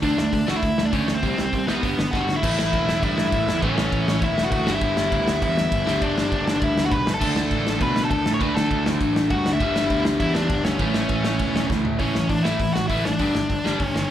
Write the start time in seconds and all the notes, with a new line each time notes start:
0.02 D2 D3 A3 D4 D5, kick, open hi-hat
0.18 D2 D3 A3, snare
0.33 D2 D3 A3, kick, open hi-hat
0.47 D2 D3 A3 D4 F#4 F#5, snare
0.56 E4 E5
0.62 D2 D3 A3, kick, open hi-hat
0.78 D2 D3 A3, snare
0.85 D4 D5
0.92 D2 D3 A3 C#4 D4 C#5, kick, open hi-hat
1.08 D3 A3, snare
1.15 C4 C5
1.23 C2 C3 G3 C4, kick, open hi-hat
1.37 C2 C3 G3, snare
1.45 C4 C5
1.53 C2 C3 G3, kick, open hi-hat
1.67 C2 C3 G3 B3 C4 B4, snare
1.82 G1 G2 D3 G3, kick, open hi-hat
1.97 G1 G2 D3, snare
2.11 G1 G2 D3 G3 F#4 F#5, kick, snare
2.28 G2 D3, snare
2.36 E4 E5
2.43 A1 A2 E3 A3, kick, crash
2.59 snare
2.73 E1, kick, ride
2.89 snare
3.03 G2 E4 E5, kick, ride
3.18 snare
3.32 A1, kick, ride
3.47 E2, snare
3.62 A1 A2 E3 A3 C#4 C#5, kick, ride
3.77 A1, snare
3.92 A1, kick, ride
4.07 A1, snare
4.22 E1 E4 E5, kick, ride
4.38 snare
4.44 F#4 F#5
4.51 D2 F#4 F#5, kick, ride
4.66 G1 G2 D3 G3, snare
4.74 E4 E5
4.81 G1, kick, ride
4.97 snare
5.12 D2, kick, ride
5.28 snare
5.42 E2 E4 E5, kick, ride
5.57 snare
5.72 G1, kick, ride
5.86 D2 G2 D3 G3, snare
6.02 G1 D4 D5, kick, ride
6.17 G1, snare
6.32 G1, kick, ride
6.46 G1, snare
6.62 D2 E4 E5, kick, ride
6.78 snare
6.85 F#4 F#5
6.91 B1 B4 B5, kick, ride
7.06 G1, snare
7.14 A4 A5
7.20 D2 D3 A3 D4, kick, crash
7.36 snare
7.51 A1, kick, ride
7.67 snare
7.81 B2 B4 B5, kick, ride
7.96 snare
8.04 A4 A5
8.11 D2 A4 A5, kick, ride
8.26 A2, snare
8.33 C#5 C#6
8.40 D2 D3 A3 D4 B4 B5, kick, ride
8.55 D2 A4 A5, snare
8.71 D2, kick, ride
8.86 D2, snare
9.01 A1, kick, ride
9.16 snare
9.30 G2 F#4 F#5, kick, ride
9.45 D2, snare
9.53 E4 E5
9.60 G1 G2 D3 G3, kick, ride
9.76 snare
9.90 D2, kick, ride
10.05 snare
10.20 E2 E4 E5, kick, ride
10.34 D4 D5, snare
10.50 G1, kick, ride
10.65 D2 C#4 C#5, snare
10.79 A1 A2 E3 A3, kick, ride
10.94 A1, snare
11.09 A1, kick, ride
11.24 A1, snare
11.39 E1, kick, ride
11.56 snare
11.70 D2, kick, snare
11.84 A1, floor tom
11.99 A1 A2 E3 A3 C#4 C#5, kick, open hi-hat
12.15 A1 A2 E3, snare
12.29 A1 A2 E3 D4 D5, kick, open hi-hat
12.43 A1 A2 E3 A3 E4 E5, snare
12.60 A1 A2 E3, kick, open hi-hat
12.73 A1 A2 E3 F#4 F#5, snare
12.88 A1 A2 E3 A3 E4 E5, kick, open hi-hat
13.04 A2 E3 D4 D5, snare
13.19 G1 G2 D3 G3, kick, open hi-hat
13.34 G1 G2 D3, snare
13.49 G1 G2 D3, kick, open hi-hat
13.64 G1 G2 D3 G3, snare
13.79 G1 G2 D3 C#5, kick, open hi-hat
13.94 G1 G2 D3, snare